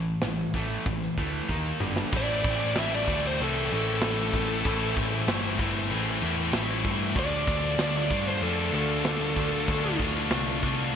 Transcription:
Already playing: picked electric bass A1, distorted electric guitar A2 E3
0.22 picked electric bass A1, distorted electric guitar A2 E3, snare, open hi-hat
0.54 picked electric bass A1, distorted electric guitar A2 E3 A3, kick
0.86 picked electric bass A1, distorted electric guitar A2 E3, kick, open hi-hat
1.02 snare
1.18 picked electric bass D2, distorted electric guitar A2 E3 A3, kick
1.49 picked electric bass D#2, distorted electric guitar D#3 A#3 D#4, kick
1.80 picked electric bass G1, distorted electric guitar G2 D3 G3, mid tom
1.96 snare
2.12 picked electric bass A1, distorted electric guitar A2 E3 A3 C4 E4, kick, crash
2.17 lead electric guitar D5
2.44 picked electric bass A1, distorted electric guitar A2 E3 A3 C4 E4, kick, crash
2.76 picked electric bass A1, distorted electric guitar A2 E3 A3 C4 E4, lead electric guitar E5, snare, crash
2.95 lead electric guitar D5
3.07 picked electric bass D2, distorted electric guitar A2 E3 A3 C4 E4, kick, crash
3.27 lead electric guitar C5
3.39 picked electric bass C2, distorted electric guitar A2 E3 A3 C4 E4, lead electric guitar A4, crash
3.71 picked electric bass A1, distorted electric guitar A2 E3 A3 C4 E4, lead electric guitar A4, crash
4.02 picked electric bass A1, distorted electric guitar A2 E3 A3 C4 E4, snare, crash
4.33 picked electric bass A1, distorted electric guitar A2 E3 A3 C4 E4, kick, crash
4.65 picked electric bass A1, distorted electric guitar A2 E3 A3 C4 E4, kick, crash
4.96 picked electric bass A1, distorted electric guitar A2 E3 A3 C4 E4, kick, crash
5.27 picked electric bass G1, distorted electric guitar A2 E3 A3 C4 E4, snare, crash
5.58 picked electric bass G1, distorted electric guitar A2 E3 A3 C4 E4, kick, crash
5.62 distorted electric guitar A2
5.75 snare
5.90 picked electric bass A1, distorted electric guitar A2 E3 A3 C4 E4, crash
6.20 picked electric bass E2, distorted electric guitar A2 E3 A3 C4 E4, crash
6.53 picked electric bass A1, distorted electric guitar A2 E3 A3 C4 E4, snare, crash
6.84 picked electric bass G2, distorted electric guitar A2 E3 A3 C4 E4, kick, crash
7.15 picked electric bass D2, distorted electric guitar D3 A3 D4 F4, lead electric guitar D5, kick, crash
7.47 picked electric bass D2, distorted electric guitar D3 A3 D4 F4, kick, crash
7.79 picked electric bass D2, distorted electric guitar D3 A3 D4 F4, lead electric guitar D5, snare, crash
7.96 lead electric guitar D5
8.10 picked electric bass G2, distorted electric guitar D3 A3 D4 F4, kick, crash
8.26 lead electric guitar C5, snare
8.42 picked electric bass F2, distorted electric guitar D3 A3 D4 F4, lead electric guitar A4, crash
8.73 picked electric bass D2, distorted electric guitar D3 A3 D4 F4, lead electric guitar A4, crash
9.05 picked electric bass D2, distorted electric guitar D3 A3 D4 F4, snare, crash
9.36 picked electric bass D2, distorted electric guitar D3 A3 D4, kick, crash
9.40 distorted electric guitar F4
9.68 picked electric bass D2, distorted electric guitar D3 A3 D4 F4, kick, crash
9.99 picked electric bass D2, distorted electric guitar D3 A3 D4 F4, kick, crash
10.30 picked electric bass C2, distorted electric guitar D3 A3 D4 F4, snare, crash
10.63 picked electric bass C2, distorted electric guitar D3 A3 D4 F4, kick, crash

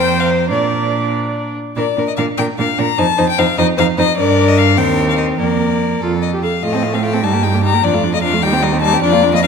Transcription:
Already playing: cello F2, violin C4 G5, viola C5
0.20 violin F5
0.30 violin C5
0.51 cello A#2, violin D4 A#4, viola D5
1.76 cello A#2, viola D4, violin A#4 D5
1.97 cello A#2, viola D4, violin A#4
2.08 violin D#5
2.17 cello A#2, viola D4, violin A#4 F5
2.37 cello A#2, viola D4, violin A#4 G5
2.58 cello A#2, viola D4, violin A#4 F5
2.78 cello A#2, viola D4, violin A#4 A#5
2.98 cello F2, viola D#4, violin C5 A5
3.18 cello F2, viola D#4, violin C5
3.29 violin G5
3.38 cello F2, viola D#4, violin C5 F5
3.58 cello F2, viola D#4, violin C5 D#5
3.77 cello F2, viola D#4, violin C5 F5
3.97 cello F2, viola D#4, violin C5 D#5
4.18 cello G2, viola D4, violin A#4 D5
4.48 violin D#5
4.58 violin F5
4.77 cello D#2, viola C4, violin A#4 G5
5.09 violin F5
5.17 violin D#5
5.39 cello F2, viola A#3, violin A#4 D5
6.01 cello F2, viola F4, violin A4
6.22 violin D#5
6.33 viola G4
6.43 viola A4, violin F5
6.63 cello A2, viola A3, violin F4 D#5
6.73 viola C4, violin A4
6.83 viola A3, violin F4
6.93 viola C4, violin A4 F5
7.03 viola A3, violin F4 G5
7.13 viola C4, violin A4
7.23 cello G2, viola G3, violin D#4 A5
7.33 viola A#3, violin G4
7.43 viola G3, violin D#4 G5
7.54 viola A#3, violin G4
7.64 viola G3, violin D#4 A#5
7.74 viola A#3, violin G4
7.84 cello F2, viola F3, violin D4 D5
7.94 viola A3, violin F4
8.04 viola F3, violin D4
8.14 viola A3, violin F4 D#5
8.23 viola F3, violin D4 F5
8.34 viola A3, violin F4
8.42 cello D#2, viola G3, violin D#4 G5
8.53 viola C4, violin G4
8.63 viola G3, violin D#4 D#5
8.73 viola C4, violin G4
8.82 viola G3, violin D#4 A5
8.93 viola C4, violin G4
9.02 cello F2, viola F3, violin D4 D5
9.13 viola A#3, violin F4
9.23 viola F3, violin D4
9.34 viola A#3, violin F4 D#5
9.43 viola F3, violin D4 F5

